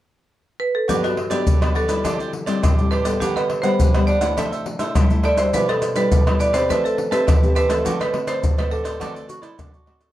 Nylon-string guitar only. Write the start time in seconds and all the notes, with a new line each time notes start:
0.89 G2 F#3 B3 D4
1.31 F#3 B3 D4
1.47 D3
1.62 F#3 B3 D4
1.89 G3 C4 E4
2.05 D3
2.47 G3 C4 E4
2.64 A2
2.79 G3 C4 E4
3.05 G3 B3 F#4
3.22 D3
3.64 G3 B3 F#4
3.80 D3
3.95 G3 B3 F#4
4.22 A3 D4 E4
4.38 C3
4.80 A3 D4 E4
4.96 G3
5.11 A3 D4 E4
5.38 G3 D4 E4
5.54 B2
5.96 G3 D4 E4
6.12 B2
6.27 G3 D4 E4
6.54 C4 G4 B4
6.70 A3
7.11 C4 G4 B4
7.27 E3
7.43 C4 G4 B4
7.69 A3 C4 F#4
7.86 D3
8.14 A3 C4 F#4
8.44 A2
8.59 A3 C4 F#4
9.01 D3 A3 C4 F#4
9.58 A2 A3 C4 F#4
9.87 A3 C4 F#4